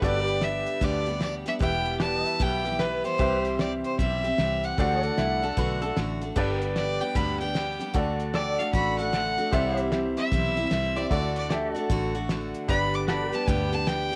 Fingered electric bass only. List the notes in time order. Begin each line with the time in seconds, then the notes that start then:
0.02 G1
0.81 D2
1.60 E1
2.40 B1
3.19 C2
3.99 B1
4.39 C2
4.78 D2
5.18 C2
5.57 B1
5.97 A1
6.36 G1
7.15 D2
7.94 D2
8.73 A1
9.52 C2
10.32 B1
10.71 C2
11.11 D2
11.90 A1
12.69 G1
13.48 D2